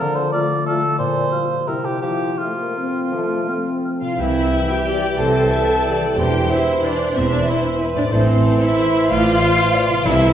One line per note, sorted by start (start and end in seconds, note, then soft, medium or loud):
0.00 1.00 D3 medium
0.00 0.28 D3 medium
0.00 1.69 F3 medium
0.00 0.32 F4 soft
0.00 0.49 A4 soft
0.00 0.17 A#4 medium
0.15 0.82 D4 soft
0.15 0.32 C5 medium
0.33 0.45 A3 soft
0.33 0.66 F4 soft
0.33 0.45 F4 soft
0.33 0.66 D5 medium
0.33 0.40 F6 soft
0.50 1.00 A4 soft
0.66 0.78 A3 soft
0.66 0.78 F4 soft
0.66 1.30 F4 soft
0.66 0.98 A4 medium
0.66 0.74 F6 soft
0.83 1.13 D4 soft
0.99 1.69 A#2 medium
0.99 1.26 A#2 medium
0.99 1.69 C5 medium
1.15 1.69 D4 soft
1.31 1.44 G3 soft
1.31 1.69 F4 soft
1.31 1.44 F4 soft
1.31 1.38 F6 soft
1.49 1.84 G4 soft
1.67 1.97 C3 soft
1.67 2.04 C3 soft
1.67 1.80 G3 soft
1.67 1.80 E4 soft
1.67 1.87 A#4 medium
1.67 1.74 E6 soft
1.85 2.04 E4 soft
1.85 2.02 G4 medium
1.85 2.04 G4 soft
2.02 2.33 F3 soft
2.02 3.10 F3 soft
2.02 2.40 G4 medium
2.20 2.93 F4 soft
2.38 2.47 A3 soft
2.38 4.02 F4 soft
2.38 2.75 A4 soft
2.38 2.47 F6 soft
2.57 2.76 A#3 soft
2.57 3.65 C5 soft
2.77 3.11 C4 soft
2.77 3.47 A4 soft
2.77 2.84 F6 soft
2.94 4.01 F4 soft
3.12 4.20 F3 soft
3.12 3.41 F3 soft
3.12 3.48 A3 soft
3.30 4.04 C4 soft
3.48 4.19 C4 soft
3.48 3.83 A4 soft
3.48 3.54 F6 soft
3.67 7.57 C5 soft
3.85 4.20 A4 soft
3.85 3.91 F6 soft
4.01 6.10 C3 soft
4.01 4.18 F4 medium
4.01 4.20 F4 soft
4.01 4.18 F5 soft
4.01 4.21 F5 soft
4.06 6.03 C4 soft
4.10 6.07 E4 soft
4.14 6.12 G4 soft
4.19 4.46 C2 medium
4.19 4.47 C2 medium
4.19 6.14 E3 soft
4.19 4.69 E4 medium
4.19 4.70 E5 medium
4.19 4.69 E5 medium
4.19 6.14 G5 medium
4.51 4.66 E3 soft
4.51 4.66 G4 soft
4.51 4.84 E5 medium
4.69 5.19 G4 medium
4.69 5.20 G5 medium
4.69 5.19 G5 medium
4.87 4.99 E3 soft
4.87 4.98 G4 soft
4.87 5.18 D5 medium
5.18 5.46 C2 medium
5.18 6.16 A4 medium
5.18 5.52 C5 medium
5.18 6.18 A5 medium
5.18 6.16 A5 medium
5.51 5.64 E3 soft
5.51 5.64 G4 soft
5.51 5.86 E5 medium
5.85 5.97 E3 soft
5.85 5.97 G4 soft
5.85 6.17 D5 medium
6.00 8.05 E3 soft
6.04 7.97 C4 soft
6.09 8.02 E4 soft
6.13 6.44 E2 medium
6.13 8.11 G4 soft
6.13 7.15 C5 medium
6.13 6.51 G5 medium
6.18 6.45 E1 medium
6.18 8.09 E3 medium
6.18 6.50 G4 medium
6.18 8.09 C5 medium
6.18 6.50 G5 medium
6.50 6.63 E3 soft
6.50 6.83 E4 medium
6.50 6.62 C5 soft
6.50 6.85 E5 medium
6.50 6.84 E5 medium
6.83 6.95 E3 soft
6.83 7.16 D4 medium
6.83 6.95 C5 soft
6.83 7.17 D5 medium
6.83 7.16 D5 medium
7.15 7.42 E1 medium
7.15 7.42 E2 medium
7.15 7.31 C4 medium
7.15 7.30 C5 medium
7.15 7.32 C5 medium
7.15 7.47 E5 medium
7.30 7.47 D4 medium
7.30 7.46 D5 medium
7.30 7.47 D5 medium
7.46 7.59 E3 soft
7.46 7.80 E4 medium
7.46 7.80 C5 medium
7.46 7.59 C5 soft
7.46 7.80 E5 medium
7.80 7.92 E3 soft
7.80 8.12 B4 medium
7.80 7.91 C5 soft
7.94 9.98 A2 medium
7.94 8.03 D4 medium
7.94 8.02 D5 medium
7.94 8.11 D5 medium
7.99 9.91 C4 soft
8.03 9.96 E4 soft
8.07 10.00 A4 soft
8.12 8.39 A1 medium
8.12 8.39 A2 medium
8.12 10.02 E3 medium
8.12 8.60 C4 medium
8.12 8.77 A4 medium
8.12 9.89 C5 medium
8.12 8.63 C5 medium
8.12 8.61 C5 medium
8.44 8.57 E3 soft
8.44 8.57 C5 soft
8.61 9.10 E4 medium
8.61 9.10 E5 medium
8.61 9.11 E5 medium
8.77 8.89 E3 medium
8.77 8.89 C5 soft
8.77 9.10 C5 medium
9.09 9.36 A1 medium
9.09 9.36 A2 medium
9.09 10.04 F4 loud
9.09 9.41 D5 medium
9.09 9.82 F5 medium
9.09 10.04 F5 medium
9.40 9.54 E3 medium
9.40 9.74 C5 medium
9.40 9.54 C5 medium
9.73 9.86 E3 medium
9.73 9.86 C5 medium
9.73 10.05 D5 medium
9.88 10.33 C3 medium
9.93 10.33 C4 soft
9.97 10.33 E4 soft
10.01 10.32 C2 medium
10.01 10.33 C3 medium
10.01 10.33 A4 soft
10.01 10.33 C5 medium
10.01 10.33 E5 medium
10.06 10.32 C3 medium
10.06 10.33 E3 medium
10.06 10.33 E4 medium
10.06 10.33 A4 medium
10.06 10.33 E5 medium